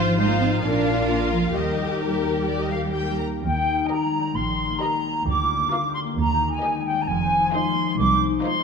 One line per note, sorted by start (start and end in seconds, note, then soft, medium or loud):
0.00 0.59 G#1 medium
0.00 0.65 G#2 medium
0.00 0.17 F3 medium
0.00 1.57 F3 soft
0.00 0.32 C4 soft
0.00 0.15 F4 soft
0.00 0.17 F4 soft
0.00 0.18 F4 medium
0.00 0.15 C5 medium
0.00 0.15 F5 medium
0.18 0.29 G#3 medium
0.18 0.63 D#4 soft
0.18 0.62 F4 soft
0.18 0.47 F4 soft
0.18 0.62 C5 soft
0.18 0.61 F5 soft
0.29 0.40 A#3 medium
0.29 0.65 C4 soft
0.40 0.48 C4 medium
0.48 0.93 F4 soft
0.63 1.55 A#1 soft
0.63 1.57 A#2 soft
0.63 1.08 D4 soft
0.63 1.31 D4 medium
0.63 1.53 F4 soft
0.63 1.53 A#4 soft
0.63 1.53 F5 soft
0.79 1.08 A#3 soft
0.94 1.39 F4 soft
1.08 1.70 A#3 soft
1.08 1.55 F4 soft
1.25 2.16 A#4 soft
1.32 1.40 F3 soft
1.40 1.57 F4 soft
1.55 3.19 D#2 soft
1.55 3.42 D#3 soft
1.55 3.16 G3 soft
1.55 3.16 G4 soft
1.55 3.19 G4 soft
1.55 3.19 A#4 soft
1.55 1.97 D#5 soft
1.72 2.64 A#3 soft
1.87 2.80 D#4 soft
2.02 2.32 G4 soft
2.02 2.46 A#4 soft
2.17 3.11 A#4 soft
2.34 2.96 G4 soft
2.49 3.89 G3 soft
2.49 2.60 D5 soft
2.61 3.74 A#3 soft
2.61 2.72 D#5 soft
2.72 2.80 F5 soft
2.81 3.58 D#4 soft
2.95 3.27 G4 soft
2.95 3.18 G5 soft
3.12 7.02 A#4 soft
3.19 3.27 A#5 soft
3.28 5.28 G4 soft
3.42 3.79 D#2 soft
3.42 3.80 D#2 medium
3.42 5.28 D#3 soft
3.42 3.85 G5 medium
3.59 4.50 D#4 soft
3.75 4.34 A#3 soft
3.89 4.19 G3 soft
3.89 4.23 G4 soft
3.89 4.23 A#4 soft
3.89 4.23 D#5 soft
3.89 4.34 A#5 medium
4.05 4.31 G#3 soft
4.20 4.80 G3 soft
4.35 4.71 A#1 medium
4.35 4.71 A#2 soft
4.35 4.65 A#3 soft
4.35 4.81 C6 medium
4.51 5.28 D#4 soft
4.67 5.57 A#3 soft
4.80 5.11 G3 soft
4.80 5.14 G4 soft
4.80 5.14 A#4 soft
4.80 5.14 D#5 soft
4.80 5.26 A#5 medium
4.97 5.22 G#3 soft
5.12 5.29 G3 soft
5.25 5.62 D2 medium
5.25 6.20 D3 soft
5.25 5.93 D6 medium
5.43 5.72 F4 soft
5.58 6.02 A#3 soft
5.71 6.06 F4 soft
5.71 6.20 F4 soft
5.71 6.05 A#4 soft
5.71 6.06 F5 soft
5.88 6.13 G4 soft
5.94 6.00 C6 medium
6.04 7.11 A#3 soft
6.17 6.54 D#2 medium
6.17 7.11 D#3 medium
6.17 6.51 A#5 medium
6.34 7.11 G4 soft
6.48 7.38 D#4 soft
6.48 6.85 G#5 medium
6.62 6.93 G3 soft
6.62 6.97 G4 soft
6.62 6.97 A#4 soft
6.62 6.96 D#5 soft
6.79 7.04 G#3 soft
6.85 7.01 G5 medium
6.94 7.10 G3 soft
7.01 7.08 A#5 medium
7.08 7.44 F1 medium
7.08 7.44 F2 medium
7.08 8.63 F3 medium
7.08 7.53 G#5 medium
7.24 8.13 C5 soft
7.39 7.99 D#4 soft
7.52 7.83 G#3 soft
7.52 7.87 D#4 soft
7.52 7.87 F4 medium
7.52 7.88 C5 medium
7.52 7.97 C6 medium
7.70 7.95 A#3 soft
7.85 8.43 G#3 soft
7.98 8.35 C2 medium
7.98 8.29 D#4 soft
7.98 8.23 D6 medium
8.14 8.63 C5 soft
8.30 8.63 D#4 soft
8.44 8.63 G#3 soft
8.44 8.63 D#4 medium
8.44 8.63 F4 medium
8.44 8.63 C5 medium
8.44 8.63 C6 medium
8.59 8.63 A#3 soft